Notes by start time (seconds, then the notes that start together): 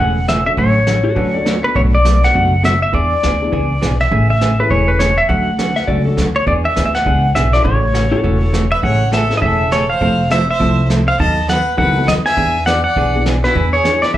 Already playing: F#5
0.00 E1 C#3 E3 A3 C#4 G#4
0.28 C#3 E3 A3 C#4 G#4 E5, snare, hi-hat pedal
0.46 C#4 D4 F#4 A4 E5
0.57 A1 D3 F#3 A3 C#4 F#4 C#5, brush sweep, kick
0.87 D3 F#3 A3 C#4 F#4, snare, hi-hat pedal
1.04 F#4 A4
1.15 D2 D3 F#3 A3 C#4 D4 F#4 B4, brush sweep, kick
1.34 C#4 D4 F#4 A4 D5
1.45 D3 F#3 A3 C#4 F#4, snare, hi-hat pedal
1.64 B3 D4 F#4 A4 B4
1.75 B1 B2 F#3 A3 D4 F#4 C#5, brush sweep, kick
1.95 D5
2.05 B2 F#3 A3 B3 D4 F#4 A4, snare, hi-hat pedal
2.23 F#5, snare
2.34 F#1 B2 F#3 A3 D4 F#4, brush sweep, kick
2.63 B2 F#3 A3 D4 F#4 E5, snare, hi-hat pedal
2.82 E5
2.93 E2 E3 B3 D4 G#4 D5, brush sweep, kick
3.23 D2 E3 B3 D4 G#4, snare, hi-hat pedal
3.41 B3 D4 E4 G#4
3.52 C#2 E3 B3 D4 G#4, brush sweep, kick
3.82 B1 E3 B3 D4 G#4, snare, hi-hat pedal
4.00 E5, snare
4.11 A1 C#3 E3 A3 C#4 G#4, brush sweep, kick
4.30 E5
4.41 C#3 E3 A3 C#4 G#4, snare, hi-hat pedal
4.59 A3 C#4 E4 G#4 B4
4.70 E1 C#3 E3 A3 C#4 G#4 C#5, brush sweep, kick
4.88 B4
4.99 C#3 E3 A3 C#4 G#4 C#5, snare, hi-hat pedal
5.18 E5
5.29 D2 D3 F#3 A3 C#4 F#4 F#5, brush sweep, kick
5.58 D3 F#3 A3 C#4 F#4, snare, hi-hat pedal
5.76 E5, snare
5.87 C#2 D3 F#3 A3 C#4 F#4 D5, brush sweep, kick
6.05 A3 C#4 D4 F#4 A4
6.17 D2 D3 F#3 A3 C#4 F#4, snare, hi-hat pedal
6.36 C#5
6.46 E2 E3 B3 D4 G#4 D5, brush sweep, kick
6.65 E5
6.76 D2 E3 B3 D4 G#4, snare, hi-hat pedal
6.86 E5
6.94 F#5, snare
7.05 C#2 E3 B3 D4 G#4, brush sweep, kick
7.35 B1 E3 B3 D4 G#4 E5, snare, hi-hat pedal
7.53 C#4 E4 F#4 A4 D5, snare
7.64 A1 C#3 E3 A3 C#4 F#4 C#5, brush sweep, kick
7.93 C#3 E3 A3 C#4 F#4, snare, hi-hat pedal
8.12 C#4 E4 F#4 A4
8.23 E1 C#3 E3 A3 C#4 F#4 A4, brush sweep, kick
8.42 A4
8.53 C#3 E3 A3 C#4 F#4, snare, hi-hat pedal
8.72 B4 E5
8.83 A1 C#3 E3 A3 C#4 G#4 C#5 F#5, brush sweep, kick
9.12 C#3 E3 A3 C#4 G#4 A4 E5, snare, hi-hat pedal
9.30 C#4 E4 G#4 A4, snare
9.37 B4 D#5
9.42 E1 C#3 E3 A3 C#4 G#4 A4 E5, brush sweep, kick
9.71 C#3 E3 A3 C#4 G#4 A4 C#5, snare, hi-hat pedal
9.90 C5 F5
10.01 F1 F3 A3 C4 E4 A4, brush sweep, kick
10.30 F3 A3 C4 E4 A4 C5 E5, snare, hi-hat pedal
10.49 C5 E5
10.60 C2 F3 A3 C4 E4 F4 A4, brush sweep, kick
10.90 F3 A3 C4 E4 A4, snare, hi-hat pedal
11.08 C5 F5
11.19 D#2 D#3 F#3 B3 D#4 A4 D#5 A5, brush sweep, kick
11.48 D#3 F#3 B3 D#4 A4 B4 F#5, snare, hi-hat pedal
11.77 C#2 D#3 F#3 B3 C4 D#4 E4 G4 A4 A#4 B4 F#5, brush sweep, kick
11.96 B3 D#4 F#4 A4
12.07 D#2 D#3 F#3 B3 D#4 A4 B4 D#5, snare, hi-hat pedal
12.25 E5 G#5, snare
12.37 E2 E3 B3 D4 G#4, brush sweep, kick
12.66 E3 B3 D4 G#4 D5 F#5, snare, hi-hat pedal
12.84 D5 F#5
12.96 B1 E3 B3 D4 G#4, brush sweep, kick
13.15 B3 D4 E4 G#4
13.26 E3 B3 D4 G#4, snare, hi-hat pedal
13.43 B3 D4 E4 F#4 B4, snare
13.55 E2 E3 B3 D4 G#4, brush sweep, kick
13.73 G#4 C#5
13.84 E3 B3 D4 E4 G#4, snare, hi-hat pedal
14.02 B4 D5, snare
14.14 B1 E3 B3 B4 E5, brush sweep, kick